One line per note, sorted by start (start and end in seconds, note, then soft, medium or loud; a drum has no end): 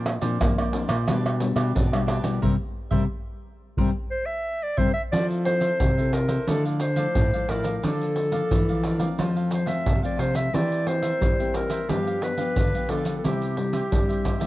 0.00 0.17 A#2 loud
0.00 0.37 A#2 medium
0.00 0.17 F3 medium
0.00 0.17 C4 medium
0.00 0.18 D4 medium
0.06 muted cavaquinho stroke soft
0.06 pandeiro medium
0.06 tamborim medium
0.06 maracas medium
0.21 0.37 A#2 medium
0.21 0.40 F3 medium
0.21 0.68 C4 medium
0.21 0.68 D4 medium
0.21 0.56 A#4 medium
0.21 0.56 C5 medium
0.21 0.55 D5 medium
0.21 pandeiro medium
0.21 maracas medium
0.41 0.72 F3 medium
0.41 0.84 A#3 medium
0.41 pandeiro medium
0.41 tamborim medium
0.41 maracas medium
0.41 surdo loud
0.58 0.72 A#4 soft
0.58 0.73 C5 soft
0.58 0.74 D5 medium
0.58 pandeiro soft
0.58 tamborim medium
0.58 maracas soft
0.73 0.94 F3 medium
0.73 0.94 C4 medium
0.73 0.89 D4 soft
0.73 0.94 D4 medium
0.73 0.90 A#4 medium
0.73 0.89 C5 medium
0.73 0.88 D5 medium
0.73 pandeiro medium
0.89 1.08 A#2 medium
0.89 1.07 A#4 medium
0.89 1.06 C5 medium
0.89 1.06 D5 medium
0.89 pandeiro medium
0.89 tamborim medium
0.89 maracas medium
1.07 1.51 B2 loud
1.07 1.72 B2 medium
1.07 1.36 G3 medium
1.07 1.37 B3 medium
1.07 1.23 D4 medium
1.07 1.37 D4 medium
1.07 1.24 G4 medium
1.07 1.24 B4 medium
1.07 1.24 D5 medium
1.07 pandeiro medium
1.07 tamborim medium
1.07 maracas medium
1.07 surdo medium
1.25 1.40 G4 soft
1.25 1.40 B4 soft
1.25 1.41 D5 medium
1.25 pandeiro soft
1.25 tamborim medium
1.25 maracas soft
1.40 1.73 G3 medium
1.40 1.73 B3 medium
1.40 1.73 D4 medium
1.40 muted cavaquinho stroke soft
1.40 pandeiro medium
1.40 maracas medium
1.56 1.71 B2 loud
1.56 1.74 G4 medium
1.56 1.73 B4 medium
1.56 1.73 D5 medium
1.56 pandeiro medium
1.56 tamborim medium
1.56 maracas medium
1.75 2.19 B2 medium
1.75 2.40 B2 medium
1.75 1.91 D4 soft
1.75 1.91 G4 soft
1.75 1.91 B4 medium
1.75 1.91 D5 medium
1.75 pandeiro medium
1.75 maracas medium
1.75 surdo loud
1.92 2.22 G3 medium
1.92 2.22 B3 medium
1.92 2.22 D4 medium
1.92 2.06 G4 soft
1.92 2.07 B4 soft
1.92 2.08 D5 soft
1.92 pandeiro soft
1.92 tamborim medium
1.92 maracas soft
2.07 2.24 D4 medium
2.07 2.24 G4 medium
2.07 2.23 B4 medium
2.07 2.21 D5 medium
2.07 pandeiro medium
2.07 tamborim medium
2.23 2.39 B2 medium
2.23 2.42 G3 medium
2.23 2.42 A#3 medium
2.23 2.43 E4 medium
2.23 2.41 G4 soft
2.23 2.41 B4 soft
2.23 2.40 D5 soft
2.23 pandeiro medium
2.23 maracas medium
2.42 2.55 C3 medium
2.42 2.54 G3 medium
2.42 2.54 A#3 medium
2.42 2.54 C4 medium
2.42 2.53 A#4 loud
2.42 2.53 C5 medium
2.42 2.53 E5 medium
2.42 surdo medium
2.91 3.05 C3 medium
2.91 3.03 G3 medium
2.91 3.03 A#3 medium
2.91 3.03 C4 medium
2.91 3.03 A#4 medium
2.91 3.03 C5 medium
2.91 3.03 E5 medium
2.91 surdo medium
3.77 3.91 C3 medium
3.77 3.90 G3 loud
3.77 3.90 A#3 medium
3.77 3.90 C4 loud
3.77 3.89 A#4 medium
3.77 3.89 C5 medium
3.77 3.89 E5 medium
3.77 surdo loud
4.11 4.27 C5 medium
4.26 4.65 E5 loud
4.63 4.79 D5 medium
4.77 4.91 C3 medium
4.77 4.90 G3 medium
4.77 4.90 A#3 loud
4.77 4.90 C4 medium
4.77 4.89 A#4 medium
4.77 4.89 C5 medium
4.77 4.93 C5 loud
4.77 4.89 E5 medium
4.77 surdo medium
4.94 5.02 E5 loud
5.12 5.70 F3 medium
5.12 5.78 F3 medium
5.12 5.42 C4 medium
5.12 5.42 E4 medium
5.12 5.45 F4 medium
5.12 5.45 A4 medium
5.12 5.42 A4 medium
5.12 5.46 C5 medium
5.12 5.27 D5 medium
5.12 5.46 E5 medium
5.12 pandeiro medium
5.12 maracas medium
5.12 surdo medium
5.30 pandeiro soft
5.30 maracas soft
5.45 5.78 C4 medium
5.45 5.79 E4 soft
5.45 5.79 A4 medium
5.45 6.15 C5 loud
5.45 muted cavaquinho stroke soft
5.45 pandeiro medium
5.60 5.96 A4 medium
5.60 5.95 C5 medium
5.60 5.95 E5 medium
5.60 pandeiro medium
5.60 maracas medium
5.80 6.38 C3 medium
5.80 6.46 C3 medium
5.80 pandeiro medium
5.80 maracas medium
5.80 surdo loud
5.98 6.44 C4 medium
5.98 6.44 E4 medium
5.98 6.12 A4 soft
5.98 6.44 A4 medium
5.98 6.12 C5 soft
5.98 6.13 E5 medium
5.98 pandeiro soft
5.98 maracas soft
6.12 6.29 F4 soft
6.12 6.29 A4 soft
6.12 6.48 A#4 medium
6.12 6.28 C5 soft
6.12 6.27 E5 medium
6.12 pandeiro medium
6.12 maracas medium
6.28 6.47 A4 medium
6.28 6.46 C5 medium
6.28 6.45 E5 medium
6.28 pandeiro medium
6.28 maracas medium
6.47 7.06 D3 medium
6.47 7.13 D3 medium
6.47 6.81 F3 medium
6.47 6.81 A3 medium
6.47 6.63 E4 medium
6.47 6.81 E4 medium
6.47 6.64 A4 medium
6.47 6.64 D5 medium
6.47 6.64 F5 medium
6.47 pandeiro medium
6.47 maracas medium
6.47 surdo medium
6.65 6.80 A4 soft
6.65 6.80 D5 soft
6.65 6.80 F5 soft
6.65 pandeiro soft
6.65 maracas soft
6.80 7.51 C5 medium
6.80 muted cavaquinho stroke soft
6.80 pandeiro medium
6.80 maracas medium
6.96 7.27 F3 medium
6.96 7.27 A3 medium
6.96 7.27 E4 medium
6.96 7.15 A4 medium
6.96 7.14 D5 medium
6.96 7.13 F5 medium
6.96 pandeiro medium
6.96 maracas medium
7.15 7.30 A2 medium
7.15 7.81 A2 medium
7.15 7.31 E4 medium
7.15 7.32 A4 soft
7.15 7.32 D5 soft
7.15 7.32 F5 medium
7.15 pandeiro medium
7.15 maracas medium
7.15 surdo loud
7.33 7.45 F3 medium
7.33 7.46 A3 medium
7.33 7.46 E4 medium
7.33 7.48 A4 soft
7.33 7.49 D5 soft
7.33 7.49 F5 soft
7.33 pandeiro soft
7.33 maracas soft
7.49 7.78 A2 medium
7.49 7.81 F3 medium
7.49 7.81 A3 medium
7.49 7.65 E4 medium
7.49 7.81 E4 medium
7.49 7.65 A4 medium
7.49 7.76 A#4 medium
7.49 7.65 D5 medium
7.49 7.64 F5 medium
7.49 pandeiro medium
7.64 7.83 A4 soft
7.64 7.82 D5 soft
7.64 7.82 F5 soft
7.64 pandeiro medium
7.64 maracas medium
7.76 7.86 A#4 medium
7.83 8.41 D3 medium
7.83 8.48 D3 medium
7.83 8.29 F3 medium
7.83 8.29 A#3 medium
7.83 8.16 D4 medium
7.83 8.30 D4 medium
7.83 9.26 A4 loud
7.83 8.17 D5 medium
7.83 8.17 F5 medium
7.83 pandeiro medium
7.83 maracas medium
7.83 surdo medium
8.01 pandeiro soft
8.01 maracas soft
8.16 muted cavaquinho stroke soft
8.16 pandeiro medium
8.32 8.62 F3 medium
8.32 8.62 A#3 medium
8.32 8.62 D4 medium
8.32 8.66 D5 medium
8.32 8.66 F5 medium
8.32 pandeiro medium
8.32 maracas medium
8.51 9.16 D3 medium
8.51 9.09 E3 medium
8.51 pandeiro medium
8.51 maracas medium
8.51 surdo loud
8.69 8.97 F3 medium
8.69 8.98 A#3 medium
8.69 8.98 D4 medium
8.69 8.84 A#4 soft
8.69 8.85 D5 soft
8.69 8.84 F5 medium
8.69 pandeiro soft
8.69 maracas soft
8.84 9.00 D4 medium
8.84 9.01 A#4 medium
8.84 8.99 D5 medium
8.84 8.98 F5 soft
8.84 pandeiro medium
8.84 maracas medium
8.99 9.63 F3 medium
8.99 9.63 A3 medium
8.99 9.64 C4 medium
8.99 9.17 A#4 medium
8.99 9.17 D5 medium
8.99 9.16 F5 medium
8.99 pandeiro medium
8.99 maracas medium
9.19 9.83 F2 medium
9.19 9.76 F3 medium
9.19 9.34 F4 medium
9.19 9.35 A4 medium
9.19 9.35 C5 medium
9.19 9.35 F5 medium
9.19 pandeiro medium
9.19 maracas medium
9.19 surdo medium
9.36 9.51 A4 soft
9.36 9.52 C5 soft
9.36 9.51 F5 soft
9.36 pandeiro soft
9.36 maracas soft
9.51 9.67 C5 medium
9.51 muted cavaquinho stroke soft
9.51 pandeiro medium
9.51 maracas medium
9.66 9.96 F3 medium
9.66 9.97 A3 medium
9.66 9.97 C4 medium
9.66 9.85 A4 medium
9.66 9.84 C5 medium
9.66 10.00 E5 medium
9.66 9.83 F5 medium
9.66 pandeiro medium
9.66 maracas medium
9.86 10.51 C3 medium
9.86 10.01 C3 medium
9.86 10.02 F4 medium
9.86 10.02 A4 medium
9.86 10.03 C5 medium
9.86 10.02 F5 medium
9.86 pandeiro medium
9.86 maracas medium
9.86 surdo medium
10.03 10.49 F3 medium
10.03 10.49 A3 medium
10.03 10.49 C4 medium
10.03 10.17 A4 soft
10.03 10.18 C5 soft
10.03 10.21 D5 medium
10.03 10.18 F5 medium
10.03 pandeiro soft
10.03 maracas soft
10.17 10.48 C3 medium
10.17 10.34 F4 medium
10.17 10.35 A4 medium
10.17 10.34 C5 medium
10.17 10.35 C5 medium
10.17 10.32 F5 medium
10.17 pandeiro medium
10.34 10.52 A4 soft
10.34 10.52 C5 soft
10.34 10.56 E5 medium
10.34 10.51 F5 soft
10.34 pandeiro medium
10.34 maracas medium
10.53 11.18 E3 medium
10.53 11.11 E3 medium
10.53 10.82 A#3 medium
10.53 10.82 C4 medium
10.53 10.86 E4 medium
10.53 10.82 G4 medium
10.53 10.86 A#4 medium
10.53 10.86 C5 medium
10.53 10.89 D5 loud
10.53 10.87 E5 medium
10.53 pandeiro medium
10.53 maracas medium
10.53 surdo medium
10.72 pandeiro soft
10.72 maracas soft
10.86 11.32 A#3 medium
10.86 11.32 C4 medium
10.86 11.33 G4 medium
10.86 11.55 C5 loud
10.86 muted cavaquinho stroke soft
10.86 pandeiro medium
11.02 11.37 A#4 medium
11.02 11.37 C5 medium
11.02 11.36 E5 medium
11.02 pandeiro medium
11.02 maracas medium
11.21 11.85 E3 medium
11.21 11.79 G3 medium
11.21 pandeiro medium
11.21 maracas medium
11.21 surdo loud
11.39 11.84 A#3 medium
11.39 11.84 C4 medium
11.39 11.85 G4 medium
11.39 11.54 A#4 soft
11.39 11.54 C5 soft
11.39 11.55 E5 medium
11.39 pandeiro soft
11.39 maracas soft
11.54 11.70 E4 soft
11.54 11.71 A#4 soft
11.54 11.91 A#4 medium
11.54 11.70 C5 soft
11.54 11.69 E5 medium
11.54 pandeiro medium
11.54 maracas medium
11.70 11.88 A#4 medium
11.70 11.87 C5 medium
11.70 11.87 E5 medium
11.70 pandeiro medium
11.70 maracas medium
11.88 12.53 G2 medium
11.88 12.17 F3 medium
11.88 12.47 G3 medium
11.88 12.17 B3 medium
11.88 12.05 D4 medium
11.88 12.18 D4 medium
11.88 12.05 G4 medium
11.88 12.25 G4 medium
11.88 12.05 B4 medium
11.88 12.06 F5 medium
11.88 pandeiro medium
11.88 maracas medium
11.88 surdo medium
12.07 12.22 G4 soft
12.07 12.22 B4 soft
12.07 12.22 F5 soft
12.07 pandeiro soft
12.07 maracas soft
12.22 12.33 F3 medium
12.22 12.33 B3 medium
12.22 12.33 D4 medium
12.22 12.91 B4 medium
12.22 muted cavaquinho stroke soft
12.22 pandeiro medium
12.22 maracas medium
12.37 12.67 F3 medium
12.37 12.67 B3 medium
12.37 12.67 D4 medium
12.37 12.55 G4 soft
12.37 12.55 B4 medium
12.37 12.54 F5 medium
12.37 pandeiro medium
12.37 maracas medium
12.56 13.21 D3 medium
12.56 12.71 D3 medium
12.56 12.72 D4 soft
12.56 12.73 G4 soft
12.56 12.73 B4 medium
12.56 12.74 F5 medium
12.56 pandeiro medium
12.56 maracas medium
12.56 surdo medium
12.73 12.85 F3 medium
12.73 12.85 B3 medium
12.73 12.85 D4 medium
12.73 12.89 G4 soft
12.73 12.90 B4 soft
12.73 12.90 F5 soft
12.73 pandeiro soft
12.73 maracas soft
12.89 13.19 D3 medium
12.89 13.21 F3 medium
12.89 13.21 B3 medium
12.89 13.06 D4 medium
12.89 13.21 D4 medium
12.89 13.06 G4 medium
12.89 13.17 A4 medium
12.89 13.05 B4 medium
12.89 13.04 F5 medium
12.89 pandeiro medium
13.05 13.23 G4 soft
13.05 13.22 B4 soft
13.05 13.22 F5 soft
13.05 pandeiro medium
13.05 maracas medium
13.18 13.26 A4 medium
13.24 13.88 C3 medium
13.24 13.82 C3 loud
13.24 13.53 G3 medium
13.24 13.53 C4 medium
13.24 13.56 E4 medium
13.24 13.53 E4 medium
13.24 14.47 G4 medium
13.24 13.57 G4 medium
13.24 13.57 C5 medium
13.24 13.57 E5 medium
13.24 pandeiro medium
13.24 maracas medium
13.24 surdo medium
13.42 pandeiro soft
13.42 maracas soft
13.57 13.86 G3 medium
13.57 13.86 C4 medium
13.57 13.87 E4 medium
13.57 muted cavaquinho stroke soft
13.57 pandeiro medium
13.73 14.08 G4 medium
13.73 14.07 C5 medium
13.73 14.07 E5 medium
13.73 pandeiro medium
13.73 maracas medium
13.92 14.47 G2 medium
13.92 14.47 G3 medium
13.92 14.37 G3 medium
13.92 14.37 C4 medium
13.92 14.38 E4 medium
13.92 pandeiro medium
13.92 maracas medium
13.92 surdo loud
14.09 14.24 G4 soft
14.09 14.24 C5 soft
14.09 14.24 E5 soft
14.09 pandeiro soft
14.09 maracas soft
14.25 14.41 E4 soft
14.25 14.41 G4 medium
14.25 14.40 C5 medium
14.25 14.39 E5 soft
14.25 pandeiro medium
14.25 maracas medium
14.25 surdo medium
14.40 14.47 G3 medium
14.40 14.47 C4 medium
14.40 14.47 E4 medium
14.40 14.47 G4 medium
14.40 14.47 C5 medium
14.40 14.47 E5 medium
14.40 pandeiro medium
14.40 maracas medium